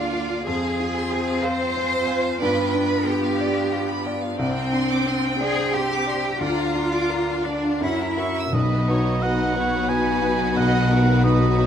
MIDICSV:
0, 0, Header, 1, 10, 480
1, 0, Start_track
1, 0, Tempo, 651466
1, 354, Time_signature, 3, 2, 24, 8
1, 2271, Tempo, 666667
1, 4671, Tempo, 706714
1, 6111, Tempo, 675676
1, 8335, End_track
2, 0, Start_track
2, 0, Title_t, "Violin section"
2, 0, Program_c, 0, 48
2, 0, Note_on_c, 0, 74, 34
2, 0, Note_on_c, 0, 77, 43
2, 330, Note_off_c, 0, 77, 0
2, 339, Note_on_c, 0, 77, 43
2, 340, Note_on_c, 0, 72, 48
2, 348, Note_off_c, 0, 74, 0
2, 452, Note_off_c, 0, 77, 0
2, 460, Note_off_c, 0, 72, 0
2, 461, Note_on_c, 0, 77, 41
2, 584, Note_on_c, 0, 80, 43
2, 589, Note_off_c, 0, 77, 0
2, 705, Note_on_c, 0, 84, 41
2, 710, Note_off_c, 0, 80, 0
2, 814, Note_on_c, 0, 80, 45
2, 830, Note_off_c, 0, 84, 0
2, 937, Note_on_c, 0, 77, 42
2, 944, Note_off_c, 0, 80, 0
2, 1055, Note_on_c, 0, 72, 41
2, 1066, Note_off_c, 0, 77, 0
2, 1179, Note_on_c, 0, 77, 41
2, 1184, Note_off_c, 0, 72, 0
2, 1297, Note_on_c, 0, 80, 46
2, 1305, Note_off_c, 0, 77, 0
2, 1407, Note_on_c, 0, 84, 46
2, 1423, Note_off_c, 0, 80, 0
2, 1509, Note_on_c, 0, 80, 42
2, 1537, Note_off_c, 0, 84, 0
2, 1629, Note_on_c, 0, 77, 43
2, 1648, Note_off_c, 0, 80, 0
2, 1756, Note_on_c, 0, 79, 44
2, 1760, Note_on_c, 0, 74, 54
2, 1768, Note_off_c, 0, 77, 0
2, 1877, Note_on_c, 0, 77, 45
2, 1884, Note_off_c, 0, 74, 0
2, 1989, Note_off_c, 0, 79, 0
2, 1998, Note_on_c, 0, 79, 50
2, 2013, Note_off_c, 0, 77, 0
2, 2122, Note_on_c, 0, 83, 45
2, 2135, Note_off_c, 0, 79, 0
2, 2247, Note_on_c, 0, 79, 46
2, 2258, Note_off_c, 0, 83, 0
2, 2370, Note_on_c, 0, 77, 44
2, 2379, Note_off_c, 0, 79, 0
2, 2496, Note_on_c, 0, 74, 44
2, 2499, Note_off_c, 0, 77, 0
2, 2611, Note_on_c, 0, 77, 40
2, 2621, Note_off_c, 0, 74, 0
2, 2728, Note_on_c, 0, 79, 38
2, 2738, Note_off_c, 0, 77, 0
2, 2845, Note_on_c, 0, 83, 43
2, 2856, Note_off_c, 0, 79, 0
2, 2958, Note_on_c, 0, 79, 41
2, 2974, Note_off_c, 0, 83, 0
2, 3085, Note_on_c, 0, 77, 44
2, 3091, Note_off_c, 0, 79, 0
2, 3211, Note_on_c, 0, 74, 47
2, 3214, Note_off_c, 0, 77, 0
2, 3329, Note_off_c, 0, 74, 0
2, 3336, Note_on_c, 0, 79, 42
2, 3461, Note_off_c, 0, 79, 0
2, 3472, Note_on_c, 0, 84, 44
2, 3586, Note_on_c, 0, 86, 40
2, 3590, Note_off_c, 0, 84, 0
2, 3707, Note_off_c, 0, 86, 0
2, 3711, Note_on_c, 0, 84, 42
2, 3830, Note_off_c, 0, 84, 0
2, 3839, Note_on_c, 0, 79, 45
2, 3954, Note_off_c, 0, 79, 0
2, 3958, Note_on_c, 0, 74, 43
2, 4074, Note_off_c, 0, 74, 0
2, 4077, Note_on_c, 0, 79, 41
2, 4185, Note_on_c, 0, 84, 45
2, 4194, Note_off_c, 0, 79, 0
2, 4308, Note_off_c, 0, 84, 0
2, 4315, Note_on_c, 0, 86, 46
2, 4432, Note_on_c, 0, 84, 40
2, 4434, Note_off_c, 0, 86, 0
2, 4553, Note_off_c, 0, 84, 0
2, 4555, Note_on_c, 0, 79, 37
2, 4670, Note_on_c, 0, 82, 43
2, 4671, Note_on_c, 0, 74, 45
2, 4674, Note_off_c, 0, 79, 0
2, 4778, Note_off_c, 0, 74, 0
2, 4786, Note_on_c, 0, 77, 41
2, 4897, Note_off_c, 0, 82, 0
2, 4901, Note_off_c, 0, 77, 0
2, 4906, Note_on_c, 0, 82, 41
2, 5020, Note_off_c, 0, 82, 0
2, 5031, Note_on_c, 0, 86, 40
2, 5144, Note_off_c, 0, 86, 0
2, 5144, Note_on_c, 0, 82, 38
2, 5261, Note_off_c, 0, 82, 0
2, 5272, Note_on_c, 0, 77, 35
2, 5386, Note_off_c, 0, 77, 0
2, 5396, Note_on_c, 0, 74, 36
2, 5506, Note_on_c, 0, 77, 37
2, 5510, Note_off_c, 0, 74, 0
2, 5626, Note_off_c, 0, 77, 0
2, 5636, Note_on_c, 0, 78, 37
2, 5744, Note_off_c, 0, 78, 0
2, 5756, Note_on_c, 0, 82, 35
2, 5871, Note_on_c, 0, 85, 33
2, 5874, Note_off_c, 0, 82, 0
2, 5993, Note_off_c, 0, 85, 0
2, 6004, Note_on_c, 0, 88, 33
2, 6117, Note_on_c, 0, 71, 52
2, 6119, Note_off_c, 0, 88, 0
2, 6119, Note_on_c, 0, 66, 52
2, 8335, Note_off_c, 0, 66, 0
2, 8335, Note_off_c, 0, 71, 0
2, 8335, End_track
3, 0, Start_track
3, 0, Title_t, "Cor anglais"
3, 0, Program_c, 1, 69
3, 5874, Note_on_c, 1, 76, 52
3, 6116, Note_on_c, 1, 75, 54
3, 6126, Note_off_c, 1, 76, 0
3, 6602, Note_on_c, 1, 78, 67
3, 6613, Note_off_c, 1, 75, 0
3, 7073, Note_on_c, 1, 80, 71
3, 7084, Note_off_c, 1, 78, 0
3, 7551, Note_off_c, 1, 80, 0
3, 7555, Note_on_c, 1, 78, 67
3, 8027, Note_off_c, 1, 78, 0
3, 8031, Note_on_c, 1, 75, 57
3, 8335, Note_off_c, 1, 75, 0
3, 8335, End_track
4, 0, Start_track
4, 0, Title_t, "Violin section"
4, 0, Program_c, 2, 48
4, 6110, Note_on_c, 2, 71, 60
4, 6342, Note_off_c, 2, 71, 0
4, 6365, Note_on_c, 2, 73, 55
4, 6599, Note_on_c, 2, 75, 51
4, 6602, Note_off_c, 2, 73, 0
4, 6830, Note_off_c, 2, 75, 0
4, 6833, Note_on_c, 2, 73, 54
4, 7064, Note_on_c, 2, 71, 61
4, 7073, Note_off_c, 2, 73, 0
4, 7550, Note_off_c, 2, 71, 0
4, 7557, Note_on_c, 2, 75, 65
4, 7792, Note_on_c, 2, 70, 60
4, 7793, Note_off_c, 2, 75, 0
4, 8028, Note_on_c, 2, 71, 50
4, 8034, Note_off_c, 2, 70, 0
4, 8252, Note_on_c, 2, 73, 53
4, 8269, Note_off_c, 2, 71, 0
4, 8335, Note_off_c, 2, 73, 0
4, 8335, End_track
5, 0, Start_track
5, 0, Title_t, "Cello section"
5, 0, Program_c, 3, 48
5, 0, Note_on_c, 3, 65, 63
5, 352, Note_on_c, 3, 68, 60
5, 355, Note_off_c, 3, 65, 0
5, 1059, Note_off_c, 3, 68, 0
5, 1080, Note_on_c, 3, 72, 71
5, 1790, Note_off_c, 3, 72, 0
5, 1794, Note_on_c, 3, 71, 58
5, 2266, Note_off_c, 3, 71, 0
5, 2275, Note_on_c, 3, 67, 59
5, 2985, Note_off_c, 3, 67, 0
5, 3235, Note_on_c, 3, 60, 66
5, 3925, Note_off_c, 3, 60, 0
5, 3955, Note_on_c, 3, 68, 76
5, 4192, Note_on_c, 3, 67, 62
5, 4193, Note_off_c, 3, 68, 0
5, 4671, Note_on_c, 3, 65, 61
5, 4674, Note_off_c, 3, 67, 0
5, 5377, Note_on_c, 3, 62, 55
5, 5378, Note_off_c, 3, 65, 0
5, 5623, Note_off_c, 3, 62, 0
5, 5623, Note_on_c, 3, 64, 48
5, 6110, Note_on_c, 3, 47, 45
5, 6112, Note_off_c, 3, 64, 0
5, 8335, Note_off_c, 3, 47, 0
5, 8335, End_track
6, 0, Start_track
6, 0, Title_t, "Grand piano"
6, 0, Program_c, 4, 0
6, 0, Control_c, 4, 64, 127
6, 0, Note_on_c, 4, 38, 37
6, 0, Note_on_c, 4, 65, 29
6, 0, Note_on_c, 4, 74, 37
6, 0, Note_on_c, 4, 77, 34
6, 100, Note_off_c, 4, 77, 0
6, 100, Note_on_c, 4, 77, 37
6, 253, Note_off_c, 4, 74, 0
6, 322, Note_off_c, 4, 38, 0
6, 344, Note_on_c, 4, 41, 46
6, 349, Note_off_c, 4, 77, 0
6, 367, Control_c, 4, 64, 0
6, 372, Note_off_c, 4, 65, 0
6, 474, Control_c, 4, 64, 127
6, 585, Note_on_c, 4, 65, 35
6, 822, Note_on_c, 4, 72, 39
6, 974, Note_off_c, 4, 65, 0
6, 1054, Note_on_c, 4, 77, 40
6, 1210, Note_off_c, 4, 72, 0
6, 1300, Note_on_c, 4, 72, 37
6, 1444, Note_off_c, 4, 77, 0
6, 1531, Note_on_c, 4, 77, 39
6, 1686, Note_off_c, 4, 72, 0
6, 1752, Note_off_c, 4, 41, 0
6, 1778, Note_off_c, 4, 77, 0
6, 1783, Note_on_c, 4, 43, 52
6, 1801, Control_c, 4, 64, 0
6, 1916, Control_c, 4, 64, 127
6, 2024, Note_on_c, 4, 62, 37
6, 2265, Note_on_c, 4, 71, 38
6, 2413, Note_off_c, 4, 62, 0
6, 2505, Note_on_c, 4, 74, 44
6, 2649, Note_off_c, 4, 71, 0
6, 2733, Note_on_c, 4, 77, 41
6, 2886, Note_off_c, 4, 74, 0
6, 2977, Note_on_c, 4, 74, 41
6, 3121, Note_off_c, 4, 77, 0
6, 3193, Note_off_c, 4, 43, 0
6, 3212, Note_on_c, 4, 36, 52
6, 3220, Note_off_c, 4, 74, 0
6, 3237, Control_c, 4, 64, 0
6, 3338, Control_c, 4, 64, 127
6, 3454, Note_on_c, 4, 62, 35
6, 3701, Note_on_c, 4, 72, 39
6, 3847, Note_off_c, 4, 62, 0
6, 3944, Note_on_c, 4, 74, 39
6, 4091, Note_off_c, 4, 72, 0
6, 4182, Note_on_c, 4, 79, 40
6, 4333, Note_off_c, 4, 74, 0
6, 4422, Note_on_c, 4, 74, 33
6, 4573, Note_off_c, 4, 79, 0
6, 4638, Note_off_c, 4, 36, 0
6, 4663, Note_on_c, 4, 38, 45
6, 4668, Note_off_c, 4, 74, 0
6, 4684, Control_c, 4, 64, 0
6, 4781, Control_c, 4, 64, 127
6, 4899, Note_on_c, 4, 62, 31
6, 5132, Note_on_c, 4, 70, 33
6, 5280, Note_off_c, 4, 62, 0
6, 5379, Note_on_c, 4, 74, 32
6, 5523, Note_off_c, 4, 70, 0
6, 5592, Note_off_c, 4, 38, 0
6, 5615, Note_on_c, 4, 42, 37
6, 5624, Note_off_c, 4, 74, 0
6, 5637, Control_c, 4, 64, 0
6, 5746, Control_c, 4, 64, 127
6, 5862, Note_on_c, 4, 66, 27
6, 5867, Note_on_c, 4, 70, 29
6, 6084, Note_off_c, 4, 66, 0
6, 6087, Note_off_c, 4, 70, 0
6, 6094, Note_off_c, 4, 42, 0
6, 6104, Note_on_c, 4, 35, 43
6, 6127, Control_c, 4, 64, 0
6, 6236, Control_c, 4, 64, 127
6, 6348, Note_off_c, 4, 35, 0
6, 6359, Note_on_c, 4, 66, 34
6, 6360, Note_on_c, 4, 63, 35
6, 6364, Note_on_c, 4, 71, 31
6, 6575, Note_off_c, 4, 63, 0
6, 6575, Note_off_c, 4, 66, 0
6, 6578, Note_off_c, 4, 71, 0
6, 6605, Note_on_c, 4, 63, 30
6, 6607, Note_on_c, 4, 66, 36
6, 6611, Note_on_c, 4, 71, 35
6, 6815, Note_off_c, 4, 63, 0
6, 6816, Note_off_c, 4, 66, 0
6, 6818, Note_off_c, 4, 71, 0
6, 6829, Note_on_c, 4, 63, 34
6, 6833, Note_on_c, 4, 66, 32
6, 6834, Note_on_c, 4, 71, 36
6, 7047, Note_off_c, 4, 63, 0
6, 7049, Note_off_c, 4, 66, 0
6, 7050, Note_off_c, 4, 71, 0
6, 7070, Note_on_c, 4, 66, 34
6, 7072, Note_on_c, 4, 63, 30
6, 7074, Note_on_c, 4, 71, 38
6, 7288, Note_off_c, 4, 66, 0
6, 7289, Note_off_c, 4, 63, 0
6, 7290, Note_off_c, 4, 71, 0
6, 7309, Note_on_c, 4, 63, 30
6, 7310, Note_on_c, 4, 66, 32
6, 7319, Note_on_c, 4, 71, 40
6, 7529, Note_off_c, 4, 63, 0
6, 7529, Note_off_c, 4, 66, 0
6, 7534, Note_off_c, 4, 71, 0
6, 7549, Note_on_c, 4, 35, 48
6, 7567, Control_c, 4, 64, 0
6, 7684, Control_c, 4, 64, 127
6, 7786, Note_off_c, 4, 35, 0
6, 7790, Note_on_c, 4, 63, 32
6, 7794, Note_on_c, 4, 66, 32
6, 7795, Note_on_c, 4, 59, 34
6, 8008, Note_off_c, 4, 63, 0
6, 8011, Note_off_c, 4, 59, 0
6, 8011, Note_off_c, 4, 66, 0
6, 8031, Note_on_c, 4, 63, 38
6, 8031, Note_on_c, 4, 66, 38
6, 8040, Note_on_c, 4, 71, 40
6, 8247, Note_off_c, 4, 63, 0
6, 8247, Note_off_c, 4, 66, 0
6, 8252, Note_off_c, 4, 71, 0
6, 8274, Note_on_c, 4, 63, 36
6, 8274, Note_on_c, 4, 66, 36
6, 8277, Note_on_c, 4, 71, 39
6, 8335, Note_off_c, 4, 63, 0
6, 8335, Note_off_c, 4, 66, 0
6, 8335, Note_off_c, 4, 71, 0
6, 8335, End_track
7, 0, Start_track
7, 0, Title_t, "Viola section"
7, 0, Program_c, 5, 48
7, 0, Note_on_c, 5, 58, 42
7, 0, Note_on_c, 5, 62, 47
7, 347, Note_off_c, 5, 62, 0
7, 357, Note_off_c, 5, 58, 0
7, 361, Note_on_c, 5, 60, 52
7, 364, Note_on_c, 5, 65, 48
7, 1761, Note_off_c, 5, 60, 0
7, 1791, Note_on_c, 5, 59, 55
7, 3197, Note_off_c, 5, 59, 0
7, 3199, Note_off_c, 5, 65, 0
7, 3231, Note_on_c, 5, 60, 52
7, 3232, Note_on_c, 5, 79, 51
7, 4648, Note_off_c, 5, 79, 0
7, 4676, Note_off_c, 5, 60, 0
7, 4679, Note_on_c, 5, 62, 42
7, 4679, Note_on_c, 5, 65, 45
7, 5608, Note_off_c, 5, 62, 0
7, 5608, Note_off_c, 5, 65, 0
7, 5623, Note_on_c, 5, 61, 39
7, 5623, Note_on_c, 5, 66, 43
7, 5970, Note_off_c, 5, 61, 0
7, 5971, Note_off_c, 5, 66, 0
7, 6106, Note_on_c, 5, 63, 44
7, 6107, Note_on_c, 5, 59, 47
7, 8335, Note_off_c, 5, 59, 0
7, 8335, Note_off_c, 5, 63, 0
7, 8335, End_track
8, 0, Start_track
8, 0, Title_t, "French horn section"
8, 0, Program_c, 6, 60
8, 6104, Note_on_c, 6, 54, 53
8, 6109, Note_on_c, 6, 59, 52
8, 8335, Note_off_c, 6, 54, 0
8, 8335, Note_off_c, 6, 59, 0
8, 8335, End_track
9, 0, Start_track
9, 0, Title_t, "Timpani"
9, 0, Program_c, 7, 47
9, 6104, Note_on_c, 7, 47, 61
9, 6802, Note_off_c, 7, 47, 0
9, 8335, End_track
10, 0, Start_track
10, 0, Title_t, "Double bass section"
10, 0, Program_c, 8, 48
10, 6120, Note_on_c, 8, 35, 44
10, 8335, Note_off_c, 8, 35, 0
10, 8335, End_track
0, 0, End_of_file